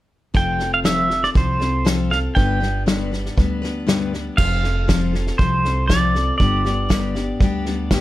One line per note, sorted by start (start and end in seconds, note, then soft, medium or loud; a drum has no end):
0.34 1.25 F1 medium
0.34 0.59 F3 medium
0.34 0.59 C4 medium
0.34 0.58 F4 medium
0.34 0.57 A4 medium
0.34 0.73 G5 medium
0.34 kick loud
0.34 snare soft
0.59 0.83 C4 soft
0.59 0.84 F4 soft
0.59 0.84 A4 soft
0.59 snare soft
0.74 0.79 F5 medium
0.84 1.10 F3 medium
0.84 1.09 C4 medium
0.84 1.08 F4 medium
0.84 1.07 A4 medium
0.84 1.24 E5 medium
0.84 snare medium
0.84 hi-hat pedal medium
1.08 1.34 C4 soft
1.08 1.34 F4 soft
1.08 1.34 A4 soft
1.08 snare soft
1.23 1.29 D5 medium
1.23 snare soft
1.34 2.26 C2 medium
1.34 1.60 F3 medium
1.34 1.60 C4 medium
1.34 1.59 F4 medium
1.34 1.58 A4 medium
1.34 1.87 C5 medium
1.34 kick loud
1.34 snare soft
1.59 1.84 C4 soft
1.59 1.84 F4 soft
1.59 1.84 A4 soft
1.59 snare soft
1.85 2.11 F3 medium
1.85 2.11 C4 medium
1.85 2.10 F4 medium
1.85 2.09 A4 medium
1.85 snare medium
1.85 hi-hat pedal medium
2.10 2.35 C4 soft
2.10 2.36 F4 soft
2.10 2.36 A4 medium
2.10 2.18 F5 medium
2.10 snare soft
2.35 3.27 G1 medium
2.35 2.61 G2 medium
2.35 2.61 D3 medium
2.35 2.61 G3 medium
2.35 2.61 B3 medium
2.35 2.60 D4 medium
2.35 2.59 B4 medium
2.35 2.83 G5 medium
2.35 kick medium
2.35 snare soft
2.60 2.86 G3 soft
2.60 2.86 B3 soft
2.60 2.86 D4 soft
2.60 2.86 B4 soft
2.60 snare soft
2.86 3.12 G2 medium
2.86 3.12 D3 medium
2.86 3.12 G3 medium
2.86 3.11 B3 medium
2.86 3.11 D4 medium
2.86 3.10 B4 medium
2.86 snare loud
2.86 hi-hat pedal medium
3.12 3.35 G3 soft
3.12 3.36 B3 soft
3.12 3.36 D4 soft
3.12 3.37 B4 soft
3.12 snare soft
3.26 snare soft
3.37 4.28 D2 medium
3.37 3.62 G3 medium
3.37 3.62 B3 medium
3.37 3.62 D4 medium
3.37 3.61 B4 medium
3.37 kick medium
3.37 snare soft
3.62 3.87 G3 soft
3.62 3.87 B3 medium
3.62 3.87 D4 soft
3.62 3.87 B4 medium
3.62 snare soft
3.87 4.12 G2 medium
3.87 4.13 D3 medium
3.87 4.13 G3 medium
3.87 4.13 B3 medium
3.87 4.13 D4 medium
3.87 4.12 B4 medium
3.87 snare medium
3.87 hi-hat pedal medium
4.13 4.38 G3 soft
4.13 4.38 B3 soft
4.13 4.39 D4 soft
4.13 4.38 B4 soft
4.13 snare soft
4.37 5.29 F1 medium
4.37 4.63 F3 medium
4.37 4.64 C4 medium
4.37 4.64 F4 medium
4.37 4.62 A4 medium
4.37 5.42 F5 medium
4.37 kick medium
4.37 snare soft
4.37 crash medium
4.64 4.87 C4 soft
4.64 4.88 F4 soft
4.64 4.88 A4 soft
4.64 snare soft
4.88 5.13 F3 medium
4.88 5.14 C4 medium
4.88 5.13 F4 medium
4.88 5.12 A4 medium
4.88 kick medium
4.88 snare loud
4.88 hi-hat pedal medium
5.13 5.39 C4 soft
5.13 5.39 F4 soft
5.13 5.39 A4 soft
5.13 snare soft
5.27 snare soft
5.38 6.29 C2 medium
5.38 5.64 F3 medium
5.38 5.65 C4 medium
5.38 5.65 F4 medium
5.38 5.63 A4 medium
5.38 5.85 C5 medium
5.38 kick loud
5.38 snare soft
5.65 5.88 C4 soft
5.65 5.89 F4 soft
5.65 5.89 A4 soft
5.65 snare soft
5.88 6.14 F3 medium
5.88 6.15 C4 medium
5.88 6.14 F4 medium
5.88 6.13 A4 medium
5.88 6.37 D5 medium
5.88 kick medium
5.88 snare loud
5.88 hi-hat pedal medium
6.14 6.40 C4 soft
6.14 6.40 F4 soft
6.14 6.40 A4 soft
6.14 snare soft
6.38 7.30 G1 medium
6.38 6.65 G2 medium
6.38 6.65 D3 medium
6.38 6.65 G3 medium
6.38 6.65 B3 medium
6.38 6.64 D4 medium
6.38 6.63 G4 medium
6.38 8.01 D5 medium
6.38 kick loud
6.38 snare soft
6.65 6.89 G3 soft
6.65 6.89 B3 soft
6.65 6.89 D4 soft
6.65 6.89 G4 medium
6.65 snare soft
6.89 7.15 G2 medium
6.89 7.15 D3 medium
6.89 7.15 G3 medium
6.89 7.15 B3 medium
6.89 7.15 D4 medium
6.89 7.14 G4 medium
6.89 kick medium
6.89 snare medium
6.89 hi-hat pedal medium
7.15 7.40 G3 soft
7.15 7.41 B3 soft
7.15 7.41 D4 medium
7.15 7.40 G4 medium
7.15 snare soft
7.40 8.01 D2 medium
7.40 7.66 G3 medium
7.40 7.66 B3 medium
7.40 7.66 D4 medium
7.40 7.65 G4 medium
7.40 kick loud
7.40 snare soft
7.66 7.91 G3 soft
7.66 7.91 B3 medium
7.66 7.91 D4 medium
7.66 7.91 G4 medium
7.66 snare soft
7.91 8.01 G2 medium
7.91 8.01 D3 medium
7.91 8.01 G3 medium
7.91 8.01 B3 medium
7.91 8.01 D4 medium
7.91 8.01 G4 loud
7.91 kick medium
7.91 snare loud
7.91 hi-hat pedal medium